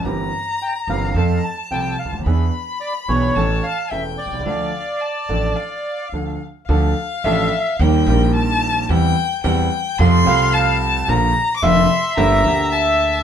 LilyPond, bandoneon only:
\new Staff \with { instrumentName = "Bandoneon" } { \time 4/4 \key d \minor \tempo 4 = 109 r4 g''8 f''8.~ f''32 bes''32 a''8 g''8 f''8 | r4 d''8 cis''4 f''8 e''8 d''8~ | d''2. r4 | r4 e''4 r2 |
r2 r8 f''4 r8 | r4 e''2. | }